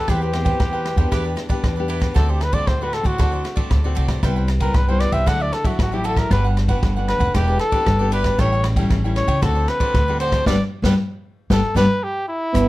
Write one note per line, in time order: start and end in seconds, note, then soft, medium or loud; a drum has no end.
0.00 0.11 A4 medium
0.08 0.53 E2 loud
0.08 0.59 E3 medium
0.08 0.25 B3 medium
0.08 0.25 C4 medium
0.08 0.21 E4 medium
0.08 1.65 G4 medium
0.08 0.25 G4 medium
0.08 0.22 B4 medium
0.08 0.21 C5 medium
0.08 0.20 G5 medium
0.08 kick medium
0.08 cross-stick medium
0.08 ride soft
0.22 0.33 B4 soft
0.22 0.33 C5 soft
0.22 0.34 G5 soft
0.33 0.57 B3 medium
0.33 0.57 C4 medium
0.33 0.57 G4 medium
0.33 muted cavaquinho stroke soft
0.33 cross-stick medium
0.33 ride soft
0.45 0.72 B4 medium
0.45 0.72 C5 soft
0.45 0.71 G5 medium
0.45 kick medium
0.45 ride medium
0.60 0.93 E2 medium
0.60 1.11 E3 medium
0.60 0.86 B3 medium
0.60 0.86 C4 medium
0.60 0.86 G4 medium
0.60 kick medium
0.60 cross-stick medium
0.60 ride medium
0.73 0.97 B4 soft
0.73 0.98 C5 soft
0.73 0.96 G5 soft
0.85 cross-stick medium
0.85 ride soft
0.96 1.09 E2 medium
0.96 1.47 B3 medium
0.96 1.47 D4 medium
0.96 1.47 G4 medium
0.96 1.11 B4 medium
0.96 1.11 C5 soft
0.96 1.11 G5 medium
0.96 kick medium
0.96 ride soft
1.11 1.34 E2 medium
1.11 1.62 E3 medium
1.11 1.24 E4 medium
1.11 1.24 G4 medium
1.11 1.24 B4 medium
1.11 1.23 D5 medium
1.11 kick medium
1.11 cross-stick medium
1.11 ride medium
1.24 1.35 G4 soft
1.24 1.35 B4 medium
1.24 1.36 D5 soft
1.36 muted cavaquinho stroke soft
1.36 cross-stick medium
1.36 ride soft
1.49 1.73 B3 medium
1.49 1.73 D4 medium
1.49 1.76 G4 medium
1.49 1.73 G4 medium
1.49 1.76 B4 medium
1.49 1.75 D5 medium
1.49 kick medium
1.49 ride soft
1.64 2.08 E2 medium
1.64 2.14 B2 medium
1.64 kick medium
1.64 cross-stick medium
1.64 ride soft
1.76 2.15 B3 medium
1.76 2.15 D4 medium
1.76 1.88 G4 soft
1.76 2.15 G4 medium
1.76 1.88 B4 soft
1.76 1.88 D5 soft
1.88 2.01 E4 medium
1.88 2.00 G4 medium
1.88 2.00 B4 medium
1.88 1.99 D5 medium
1.88 ride soft
2.00 2.14 G4 soft
2.00 2.14 B4 soft
2.00 2.13 D5 soft
2.00 kick medium
2.00 cross-stick medium
2.00 ride soft
2.14 2.60 D2 loud
2.14 2.66 D3 medium
2.14 2.41 A3 medium
2.14 2.41 C4 medium
2.14 2.27 F#4 medium
2.14 2.41 F#4 medium
2.14 2.28 A4 medium
2.14 2.32 A4 medium
2.14 2.28 C5 medium
2.14 2.27 D5 medium
2.14 kick medium
2.14 cross-stick medium
2.14 ride soft
2.28 2.44 G4 medium
2.28 2.40 A4 soft
2.28 2.41 C5 soft
2.28 2.40 D5 soft
2.41 2.55 B4 medium
2.41 muted cavaquinho stroke soft
2.41 cross-stick medium
2.41 ride soft
2.52 2.76 A3 medium
2.52 2.77 C4 medium
2.52 2.77 F#4 medium
2.52 2.79 A4 medium
2.52 2.79 C5 medium
2.52 2.79 D5 medium
2.52 2.69 D5 loud
2.52 kick medium
2.52 ride medium
2.67 3.01 D2 medium
2.67 3.17 A2 medium
2.67 2.85 C5 medium
2.67 kick medium
2.67 cross-stick medium
2.67 ride soft
2.81 3.16 A3 medium
2.81 3.16 C4 medium
2.81 3.16 F#4 medium
2.81 3.05 A4 soft
2.81 2.95 B4 medium
2.81 3.04 C5 soft
2.81 3.03 D5 soft
2.93 3.08 A4 medium
2.93 cross-stick medium
2.93 ride soft
3.03 3.16 D2 medium
3.03 3.58 F#4 medium
3.03 3.18 A4 soft
3.03 3.18 C5 medium
3.03 3.18 D5 medium
3.03 kick medium
3.03 ride medium
3.18 3.42 D2 medium
3.18 3.69 D3 medium
3.18 3.54 A3 medium
3.18 3.55 C4 medium
3.18 3.31 F#4 medium
3.18 3.55 F#4 medium
3.18 3.32 A4 medium
3.18 3.31 C5 medium
3.18 3.30 D5 medium
3.18 kick medium
3.18 cross-stick medium
3.18 ride medium
3.32 3.43 A4 soft
3.32 3.43 C5 soft
3.32 3.44 D5 medium
3.44 muted cavaquinho stroke soft
3.44 cross-stick medium
3.44 ride soft
3.56 3.80 A3 medium
3.56 3.80 C4 medium
3.56 3.80 F#4 medium
3.56 3.83 A4 medium
3.56 3.83 C5 medium
3.56 3.82 D5 medium
3.56 kick medium
3.56 ride medium
3.70 3.95 D2 medium
3.70 4.21 A2 soft
3.70 kick medium
3.70 cross-stick medium
3.70 ride medium
3.84 4.20 A3 medium
3.84 4.20 C4 medium
3.84 4.20 F#4 medium
3.84 3.94 A4 soft
3.84 3.95 C5 soft
3.84 3.95 D5 soft
3.95 4.21 C2 medium
3.95 4.08 F#4 medium
3.95 4.09 A4 medium
3.95 4.08 C5 medium
3.95 4.07 D5 medium
3.95 ride medium
4.08 4.22 A4 soft
4.08 4.22 C5 soft
4.08 4.21 D5 soft
4.08 kick medium
4.08 cross-stick medium
4.08 ride soft
4.23 4.67 C2 loud
4.23 4.73 C3 medium
4.23 4.48 G3 medium
4.23 4.48 B3 medium
4.23 4.35 E4 medium
4.23 4.48 E4 medium
4.23 4.36 B4 medium
4.23 4.36 C5 medium
4.23 4.35 G5 medium
4.23 kick medium
4.23 cross-stick medium
4.23 ride soft
4.36 4.49 B4 soft
4.36 4.48 C5 soft
4.36 4.48 G5 soft
4.48 muted cavaquinho stroke soft
4.48 cross-stick medium
4.48 ride medium
4.60 4.84 G3 medium
4.60 4.84 B3 medium
4.60 4.84 E4 medium
4.60 4.78 A#4 medium
4.60 4.87 B4 medium
4.60 4.87 C5 soft
4.60 4.87 G5 medium
4.60 kick medium
4.60 ride medium
4.74 5.08 C2 medium
4.74 5.25 G2 medium
4.74 4.91 B4 medium
4.74 kick medium
4.74 cross-stick medium
4.74 ride soft
4.88 5.23 G3 medium
4.88 5.24 B3 medium
4.88 5.24 E4 medium
4.88 5.12 B4 soft
4.88 5.01 C5 medium
4.88 5.13 C5 soft
4.88 5.11 G5 soft
5.00 5.14 D5 medium
5.00 cross-stick medium
5.00 ride medium
5.11 5.24 C2 medium
5.11 5.26 B4 medium
5.11 5.26 C5 medium
5.11 5.30 E5 medium
5.11 5.25 G5 medium
5.11 kick medium
5.11 ride medium
5.26 5.49 D2 medium
5.26 5.77 D3 medium
5.26 5.52 F#3 medium
5.26 5.52 A3 medium
5.26 5.53 E4 medium
5.26 5.39 F#4 medium
5.26 5.39 A4 medium
5.26 5.39 D5 medium
5.26 5.39 E5 medium
5.26 5.44 F#5 medium
5.26 kick medium
5.26 cross-stick medium
5.26 ride medium
5.40 5.51 A4 soft
5.40 5.52 D5 soft
5.40 5.55 D5 medium
5.40 5.52 E5 soft
5.52 5.68 A4 medium
5.52 muted cavaquinho stroke soft
5.52 cross-stick medium
5.52 ride soft
5.65 5.88 F#3 medium
5.65 5.88 A3 medium
5.65 5.88 E4 medium
5.65 5.80 F#4 medium
5.65 5.91 A4 soft
5.65 5.91 D5 medium
5.65 5.90 E5 medium
5.65 kick medium
5.65 ride medium
5.79 6.23 A1 medium
5.79 6.28 A2 medium
5.79 5.96 F#4 medium
5.79 kick medium
5.79 cross-stick medium
5.79 ride medium
5.92 6.27 F#3 medium
5.92 6.28 A3 medium
5.92 6.28 E4 medium
5.92 6.07 G4 medium
5.92 6.03 A4 soft
5.92 6.04 D5 soft
5.92 6.04 E5 soft
6.04 6.17 F#4 medium
6.04 6.17 A4 medium
6.04 6.20 A4 medium
6.04 6.16 D5 medium
6.04 6.15 E5 medium
6.04 ride soft
6.16 6.30 A4 soft
6.16 6.31 A#4 medium
6.16 6.30 D5 soft
6.16 6.29 E5 medium
6.16 kick medium
6.16 cross-stick medium
6.16 ride soft
6.31 6.75 G1 loud
6.31 6.81 G3 medium
6.31 6.66 B3 medium
6.31 6.43 D4 medium
6.31 6.67 D4 medium
6.31 6.67 F#4 medium
6.31 6.43 G4 medium
6.31 6.44 B4 medium
6.31 6.48 B4 medium
6.31 6.43 F#5 medium
6.31 kick medium
6.31 cross-stick medium
6.31 ride soft
6.44 6.56 G4 soft
6.44 6.56 B4 soft
6.44 6.56 F#5 medium
6.57 muted cavaquinho stroke soft
6.57 cross-stick medium
6.57 ride soft
6.68 6.92 B3 medium
6.68 6.92 D4 medium
6.68 6.92 F#4 medium
6.68 6.95 G4 medium
6.68 6.95 B4 medium
6.68 6.94 F#5 medium
6.68 kick medium
6.68 ride soft
6.83 7.16 G1 medium
6.83 7.33 D3 medium
6.83 kick medium
6.83 cross-stick medium
6.83 ride soft
6.96 7.32 B3 medium
6.96 7.32 D4 medium
6.96 7.32 F#4 medium
6.96 7.20 G4 soft
6.96 7.19 B4 soft
6.96 7.19 F#5 medium
7.08 7.36 B4 medium
7.08 cross-stick medium
7.08 ride soft
7.19 7.31 F1 medium
7.19 7.34 G4 soft
7.19 7.33 B4 medium
7.19 7.33 F#5 medium
7.19 kick medium
7.19 ride soft
7.34 7.57 E1 loud
7.34 7.85 E3 medium
7.34 7.60 B3 medium
7.34 7.60 D4 medium
7.34 7.47 E4 medium
7.34 7.60 G4 medium
7.34 7.47 G4 medium
7.34 7.60 G4 medium
7.34 7.47 B4 medium
7.34 7.46 D5 medium
7.34 kick medium
7.34 cross-stick medium
7.34 ride medium
7.47 7.58 G4 soft
7.47 7.58 B4 soft
7.47 7.58 D5 medium
7.59 8.09 A4 loud
7.59 muted cavaquinho stroke soft
7.59 cross-stick medium
7.59 ride soft
7.71 7.95 B3 medium
7.71 7.96 D4 medium
7.71 7.99 G4 medium
7.71 7.96 G4 medium
7.71 7.98 B4 medium
7.71 7.98 D5 medium
7.71 kick medium
7.71 ride medium
7.86 8.31 G1 medium
7.86 8.36 B2 soft
7.86 kick medium
7.86 cross-stick medium
7.86 ride soft
7.99 8.35 B3 medium
7.99 8.35 D4 medium
7.99 8.11 G4 soft
7.99 8.36 G4 medium
7.99 8.12 B4 soft
7.99 8.12 D5 medium
8.12 8.24 E4 medium
8.12 8.25 G4 medium
8.12 8.24 B4 medium
8.12 8.42 B4 medium
8.12 8.23 D5 medium
8.12 ride medium
8.24 8.38 G4 soft
8.24 8.38 B4 soft
8.24 8.37 D5 medium
8.24 kick medium
8.24 cross-stick medium
8.24 ride soft
8.38 8.83 A1 loud
8.38 8.89 A2 medium
8.38 8.74 G3 medium
8.38 8.75 C#4 medium
8.38 8.51 E4 medium
8.38 8.75 E4 medium
8.38 8.51 A4 medium
8.38 8.51 C#5 medium
8.38 8.66 C#5 medium
8.38 8.51 G5 medium
8.38 kick medium
8.38 cross-stick medium
8.38 ride soft
8.52 8.64 A4 soft
8.52 8.64 C#5 medium
8.52 8.64 G5 medium
8.64 muted cavaquinho stroke soft
8.64 cross-stick medium
8.64 ride soft
8.76 9.00 G3 medium
8.76 9.00 C#4 medium
8.76 9.00 E4 medium
8.76 9.03 A4 medium
8.76 9.03 C#5 medium
8.76 9.02 G5 medium
8.76 kick medium
8.76 ride medium
8.90 9.24 A1 medium
8.90 9.40 E3 medium
8.90 kick medium
8.90 cross-stick medium
8.90 ride medium
9.04 9.39 G3 medium
9.04 9.39 C#4 medium
9.04 9.40 E4 medium
9.04 9.28 A4 soft
9.04 9.27 C#5 soft
9.04 9.26 G5 soft
9.16 9.45 C#5 medium
9.16 cross-stick medium
9.16 ride soft
9.27 9.39 C#2 medium
9.27 9.41 A4 medium
9.27 9.41 C#5 medium
9.27 9.41 G5 medium
9.27 kick medium
9.27 ride medium
9.42 9.65 D2 loud
9.42 9.92 D3 medium
9.42 9.78 A3 medium
9.42 9.78 C4 medium
9.42 9.54 F#4 medium
9.42 9.78 F#4 medium
9.42 9.55 A4 medium
9.42 9.70 A4 medium
9.42 9.55 C5 medium
9.42 9.54 D5 medium
9.42 kick medium
9.42 cross-stick medium
9.42 ride medium
9.55 9.67 A4 soft
9.55 9.67 C5 soft
9.55 9.67 D5 medium
9.68 10.20 B4 loud
9.68 muted cavaquinho stroke soft
9.68 cross-stick medium
9.68 ride soft
9.80 10.03 A3 medium
9.80 10.03 C4 medium
9.80 10.04 F#4 medium
9.80 10.07 A4 medium
9.80 10.07 C5 medium
9.80 10.06 D5 medium
9.80 kick medium
9.80 ride medium
9.94 10.39 D2 medium
9.94 10.44 A2 medium
9.94 kick medium
9.94 cross-stick medium
9.94 ride medium
10.08 10.43 A3 medium
10.08 10.44 C4 medium
10.08 10.44 F#4 medium
10.08 10.20 A4 soft
10.08 10.20 C5 soft
10.08 10.20 D5 medium
10.20 10.33 F#4 medium
10.20 10.33 A4 medium
10.20 10.45 C5 loud
10.20 10.33 C5 medium
10.20 10.32 D5 medium
10.20 ride medium
10.32 10.46 A4 soft
10.32 10.46 C5 soft
10.32 10.45 D5 medium
10.32 kick medium
10.32 cross-stick medium
10.32 ride soft
10.46 10.56 G1 loud
10.46 10.55 G3 loud
10.46 10.55 B3 loud
10.46 10.55 D4 loud
10.46 10.56 G4 loud
10.46 10.56 B4 medium
10.46 10.63 D5 medium
10.46 10.56 D5 medium
10.46 kick medium
10.46 snare medium
10.82 10.94 G1 medium
10.82 10.93 G3 medium
10.82 10.94 B3 loud
10.82 10.93 D4 medium
10.82 10.94 G4 medium
10.82 10.94 B4 medium
10.82 10.94 D5 medium
10.82 kick medium
10.82 snare medium
11.50 11.60 G1 loud
11.50 11.59 G3 loud
11.50 11.59 B3 medium
11.50 11.59 D4 medium
11.50 11.60 G4 loud
11.50 11.76 A4 medium
11.50 11.60 B4 medium
11.50 11.60 D5 medium
11.50 kick medium
11.50 snare medium
11.75 11.85 G1 loud
11.75 11.85 G3 loud
11.75 11.85 B3 loud
11.75 11.85 D4 medium
11.75 11.85 G4 medium
11.75 11.85 B4 medium
11.75 12.05 B4 loud
11.75 11.85 D5 medium
11.75 kick medium
11.75 snare medium
12.04 12.28 G4 medium
12.28 12.68 E4 medium
12.54 12.68 G1 medium
12.54 12.68 G2 medium
12.54 12.68 E3 medium
12.54 12.68 B3 loud
12.54 12.68 B3 soft
12.54 12.67 D4 soft
12.54 12.68 D4 medium
12.54 12.67 G4 medium
12.54 12.67 B4 soft
12.54 12.67 E5 medium
12.54 kick medium
12.54 cross-stick medium
12.54 closed hi-hat medium